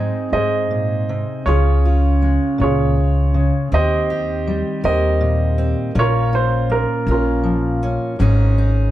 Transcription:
Already playing: steel-string acoustic guitar G#2 G#3 C4 D#4, grand piano C4 D#4 G#4
0.32 upright bass G#2, steel-string acoustic guitar G#2, grand piano G#4 C5 D#5
0.71 steel-string acoustic guitar A#2
1.09 steel-string acoustic guitar C3
1.46 upright bass C#2, steel-string acoustic guitar C#3 C#4, grand piano F4 G#4 C#5
1.85 steel-string acoustic guitar F4
2.22 steel-string acoustic guitar G#3
2.58 upright bass C#2, steel-string acoustic guitar A#2, grand piano C#5
2.63 grand piano F4 G#4
3.34 steel-string acoustic guitar C#3
3.72 upright bass D#2, steel-string acoustic guitar D#3 C4, grand piano G4 C5 D#5
4.10 steel-string acoustic guitar G4
4.47 steel-string acoustic guitar G3
4.84 upright bass D#2, grand piano G4 C5 D#5, steel-string acoustic guitar A#4
5.21 steel-string acoustic guitar A#2
5.58 steel-string acoustic guitar C4
5.95 upright bass A#1, steel-string acoustic guitar A#2 C#4
5.99 grand piano F4 A#4 C#5
6.33 steel-string acoustic guitar F4, grand piano C5
6.70 steel-string acoustic guitar A#3, grand piano A#4
7.07 upright bass A#1, steel-string acoustic guitar F4
7.11 grand piano C#4 F4 A#4
7.43 steel-string acoustic guitar F3
7.83 steel-string acoustic guitar C#4
8.19 upright bass G#1, steel-string acoustic guitar G#2 G#3 C#4 D#4 G#4
8.58 steel-string acoustic guitar D#4

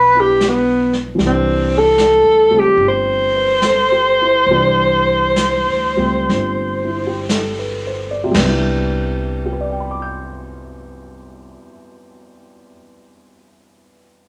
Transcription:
Already playing: upright bass B1, grand piano F3 A3 B3 D4, alto saxophone B4
0.13 grand piano B3 D4 E4
0.20 alto saxophone G4
0.40 snare, hi-hat pedal
0.49 alto saxophone B3
0.93 snare
1.15 upright bass C2, grand piano E3 G3
1.19 brush sweep, snare
1.26 alto saxophone C4, grand piano D4
1.78 alto saxophone A4
1.98 snare, hi-hat pedal
2.24 upright bass D2
2.51 upright bass C#2, grand piano G3 A3 C4
2.59 alto saxophone G4
2.77 upright bass G1, brush sweep
2.88 alto saxophone C5
3.36 grand piano B4
3.62 grand piano A4, snare, hi-hat pedal
3.92 grand piano G4
4.22 grand piano E4
4.46 upright bass C2, brush sweep
4.50 grand piano E3 G3 D4
5.36 snare, hi-hat pedal
5.66 upright bass D2
5.97 upright bass C#2, grand piano G3 A3 C4
6.29 upright bass G1, brush sweep, snare
6.84 grand piano E4
7.07 grand piano G4
7.29 grand piano A4, snare, hi-hat pedal
7.59 grand piano B4
7.87 grand piano C5
8.11 grand piano D5
8.24 grand piano C3
8.31 upright bass C2, grand piano G3, snare, floor tom, crash
8.36 grand piano B3
8.43 grand piano D4
8.49 grand piano E4
9.46 grand piano G4
9.53 grand piano B4
9.61 grand piano D5
9.70 grand piano G5
9.80 grand piano B5
9.91 grand piano D6
10.02 grand piano G6

